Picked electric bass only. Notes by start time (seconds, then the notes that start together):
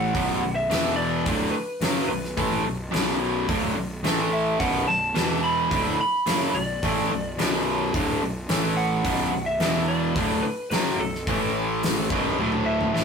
Already playing: A1
0.14 B0
0.42 B0
0.71 E1
1.26 D1
1.53 muted picked electric bass stroke
1.80 F#1
2.09 B0
2.38 A1
2.64 B0
2.91 B0
3.49 D1
3.75 B0
4.03 A1
4.60 B0
4.88 B0
5.15 E1
5.71 D1
5.99 muted picked electric bass stroke
6.26 F#1
6.54 B0
6.83 A1
7.09 B0
7.37 B0
7.94 D1
8.22 B0
8.49 A1
9.05 B0
9.33 B0
9.60 E1
10.16 D1
10.45 muted picked electric bass stroke
10.71 F#1
10.98 B0
11.27 A1
12.10 B0
12.38 D1
12.94 A1